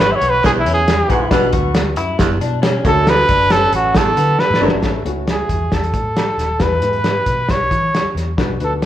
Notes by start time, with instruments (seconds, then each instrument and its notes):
Already playing: fingered electric bass G#1, grand piano E3 B3 E4 B4
0.00 clean electric guitar B3, trumpet B4
0.12 trumpet C#5 E5
0.21 fingered electric bass B1, closed hi-hat
0.30 trumpet B4
0.44 fingered electric bass B1, baritone saxophone E2, trumpet G#4, kick, snare, closed hi-hat
0.59 trumpet E4
0.66 fingered electric bass E2, clean electric guitar C#4, closed hi-hat
0.74 trumpet G#4
0.88 snare, closed hi-hat
1.08 fingered electric bass A#1, baritone saxophone G#2, grand piano B3 E4 G#4 B4, clean electric guitar B3, kick, closed hi-hat
1.30 fingered electric bass B1, grand piano B2 B3 D4 F#4 B4, baritone saxophone B2, clean electric guitar B3, kick, snare, closed hi-hat
1.53 fingered electric bass D2, clean electric guitar F#4, kick, closed hi-hat
1.75 snare, closed hi-hat
1.96 fingered electric bass F#2, clean electric guitar E4, closed hi-hat
2.19 fingered electric bass F#1, baritone saxophone E2, kick, snare, closed hi-hat
2.40 fingered electric bass B2, clean electric guitar D4, closed hi-hat
2.62 clean electric guitar C#4, snare, closed hi-hat
2.85 fingered electric bass D2, baritone saxophone F#2, grand piano D3 A3 D4 F#4 A4, trumpet A4, kick, closed hi-hat
3.07 baritone saxophone D2, trumpet B4, snare, closed hi-hat
3.29 fingered electric bass F#1, clean electric guitar D4, kick, closed hi-hat
3.50 clean electric guitar C#4, trumpet A4, snare, closed hi-hat
3.72 fingered electric bass A1, trumpet F#4, closed hi-hat
3.94 fingered electric bass A1, baritone saxophone E2, trumpet A4, kick, snare, closed hi-hat
4.17 fingered electric bass D3, clean electric guitar B3, closed hi-hat
4.39 trumpet B4, snare
4.50 fingered electric bass A2, snare
4.61 fingered electric bass G1, baritone saxophone F#2, grand piano A3 D4 F#4 B4, clean electric guitar D4
4.68 snare
4.73 fingered electric bass G#1
4.82 fingered electric bass A1, grand piano A2 A3 C#4 E4 A4, kick, snare, closed hi-hat
5.04 fingered electric bass C#2, grand piano A3 C#4 E4 F#4, closed hi-hat
5.27 trumpet G#4, snare, closed hi-hat
5.49 fingered electric bass E2, kick, closed hi-hat
5.72 fingered electric bass E2, trumpet A4, kick, snare, closed hi-hat
5.83 closed hi-hat
5.94 fingered electric bass A2, kick, closed hi-hat
6.16 snare, closed hi-hat
6.38 fingered electric bass D#1, snare, closed hi-hat
6.59 fingered electric bass E2, grand piano E3 B3 E4 G#4 B4, trumpet B4, kick, snare, closed hi-hat
6.81 fingered electric bass G#2, grand piano B3 E4 G4 B4, closed hi-hat
6.88 grand piano G#4
6.93 closed hi-hat
7.04 snare, closed hi-hat
7.26 fingered electric bass B2, kick, closed hi-hat
7.49 fingered electric bass B1, trumpet C#5, kick, snare, closed hi-hat
7.71 fingered electric bass E3, kick, closed hi-hat
7.95 snare, closed hi-hat
8.04 muted fingered electric bass stroke
8.15 fingered electric bass E2, snare, closed hi-hat
8.37 fingered electric bass B1, grand piano B2 B3 D4 F#4 B4, kick, snare, closed hi-hat
8.60 fingered electric bass D2, grand piano B3 D4 F#4 B4, closed hi-hat
8.64 trumpet A4
8.82 snare, closed hi-hat